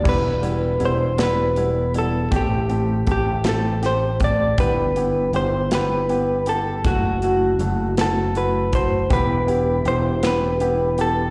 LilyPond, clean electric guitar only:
\new Staff \with { instrumentName = "Clean electric guitar" } { \time 6/8 \key e \minor \tempo 4. = 53 b'4 c''8 b'4 a'8 | g'4 g'8 a'8 c''8 d''8 | b'4 c''8 b'4 a'8 | fis'4. a'8 b'8 c''8 |
b'4 c''8 b'4 a'8 | }